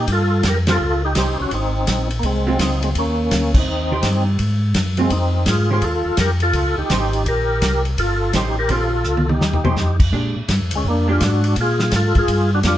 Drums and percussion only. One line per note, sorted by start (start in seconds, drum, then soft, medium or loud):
0.08 kick soft
0.08 ride medium
0.43 kick soft
0.43 snare medium
0.43 hi-hat pedal medium
0.43 ride medium
0.67 snare medium
0.67 ride medium
1.15 kick soft
1.15 snare medium
1.15 hi-hat pedal medium
1.15 ride medium
1.51 kick soft
1.51 ride medium
1.87 kick soft
1.87 snare medium
1.87 hi-hat pedal medium
1.87 ride medium
2.11 ride soft
2.23 kick soft
2.23 ride medium
2.59 kick soft
2.59 snare medium
2.59 hi-hat pedal soft
2.59 ride medium
2.83 ride soft
2.95 kick soft
2.95 ride medium
3.31 kick soft
3.31 snare medium
3.31 hi-hat pedal medium
3.31 ride medium
3.54 kick medium
3.54 crash medium
4.03 kick soft
4.03 snare medium
4.03 hi-hat pedal soft
4.03 ride medium
4.39 kick soft
4.39 ride medium
4.74 kick soft
4.74 snare medium
4.74 hi-hat pedal medium
4.74 ride medium
4.97 ride soft
5.10 kick soft
5.10 ride medium
5.46 kick soft
5.46 snare medium
5.46 hi-hat pedal soft
5.46 ride medium
5.82 kick soft
5.82 ride medium
6.17 kick soft
6.17 snare medium
6.17 hi-hat pedal medium
6.17 ride medium
6.40 ride soft
6.53 kick soft
6.53 ride medium
6.90 kick soft
6.90 snare medium
6.90 hi-hat pedal medium
6.90 ride medium
7.13 ride soft
7.26 kick soft
7.26 ride medium
7.62 kick soft
7.62 snare medium
7.62 hi-hat pedal medium
7.62 ride medium
7.85 ride soft
7.98 kick soft
7.98 ride medium
8.33 kick soft
8.33 snare medium
8.33 hi-hat pedal medium
8.33 ride medium
8.69 kick soft
8.69 ride soft
9.04 hi-hat pedal medium
9.17 high tom medium
9.29 high tom medium
9.41 snare medium
9.53 floor tom medium
9.65 floor tom medium
9.76 snare soft
9.76 hi-hat pedal soft
10.00 kick medium
10.00 crash medium
10.13 kick soft
10.49 kick soft
10.49 snare medium
10.49 hi-hat pedal soft
10.49 ride medium
10.71 ride medium
10.85 kick soft
11.21 kick soft
11.21 snare medium
11.21 hi-hat pedal medium
11.21 ride medium
11.44 ride soft
11.56 kick soft
11.56 ride medium
11.79 snare medium
11.92 kick soft
11.92 snare medium
11.92 hi-hat pedal medium
11.92 ride medium
12.15 kick medium
12.15 ride soft
12.28 kick soft
12.28 ride medium
12.63 kick soft
12.63 snare medium
12.63 hi-hat pedal medium
12.63 ride medium